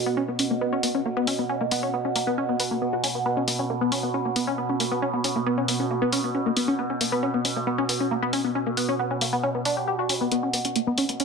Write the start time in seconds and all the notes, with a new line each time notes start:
Already playing: B2
0.06 B3
0.17 C#4
0.28 B3
0.39 C#4, open hi-hat
0.50 A#3
0.61 B3
0.73 C#4
0.83 B3, open hi-hat
0.95 C#4
1.05 A#3
1.17 B3
1.27 C#4, open hi-hat
1.39 B3
1.49 C#4
1.61 A#3
1.71 B3, open hi-hat
1.83 C#4
1.94 B3
2.05 C#4
2.16 A#3, open hi-hat
2.27 B3
2.38 C#4
2.49 B3
2.60 B4, open hi-hat
2.71 A#3
2.82 B3
2.93 F#4
3.04 C#4, open hi-hat
3.15 B3
3.26 B3
3.37 C#4
3.48 B3, open hi-hat
3.59 C#4
3.70 A#3
3.81 B3
3.92 C#4, open hi-hat
4.03 B3
4.14 C#4
4.25 A#3
4.36 B3, open hi-hat
4.47 C#4
4.58 B3
4.69 C#4
4.80 A#3, open hi-hat
4.92 B3
5.02 C#4
5.14 B3
5.24 C#4, open hi-hat
5.36 A#3
5.46 B3
5.58 C#4
5.68 B3, open hi-hat
5.80 C#4
5.91 A#3
6.02 B3
6.13 C#4, open hi-hat
6.24 B3
6.35 C#4
6.46 A#3
6.57 B3, open hi-hat
6.68 C#4
6.79 B3
6.90 C#4
7.01 A#3, open hi-hat
7.12 B3
7.23 C#4
7.34 B3
7.45 C#4, open hi-hat
7.56 A#3
7.67 B3
7.78 C#4
7.89 B3, open hi-hat
8.00 C#4
8.11 A#3
8.22 B3
8.33 C#4, open hi-hat
8.44 B3
8.55 C#4
8.66 A#3
8.77 B3, open hi-hat
8.89 C#4
8.99 B3
9.11 C#4
9.21 A#3, open hi-hat
9.33 B3
9.43 C#4
9.55 B3
9.65 D4, open hi-hat
9.77 G4
9.87 G4
9.99 F#4
10.09 C#4, open hi-hat
10.21 B3
10.32 B2 B3, closed hi-hat
10.43 C#4
10.53 B3, open hi-hat
10.65 C#4, closed hi-hat
10.76 A#3, closed hi-hat
10.87 B3
10.98 C#4, open hi-hat
11.09 B3, closed hi-hat
11.20 C#4, closed hi-hat